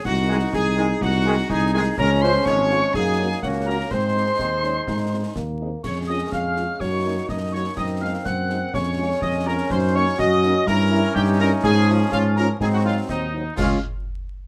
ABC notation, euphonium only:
X:1
M:2/4
L:1/8
Q:1/4=124
K:Db
V:1 name="Euphonium"
E4- | E2 E2 | D4 | E2 D2 |
C2 C D | E2 B,2 | A4 | G2 E2 |
E2 C2 | D4 | E2 G2 | =E2 _E2- |
E2 D2 | E2 C z | z4 |]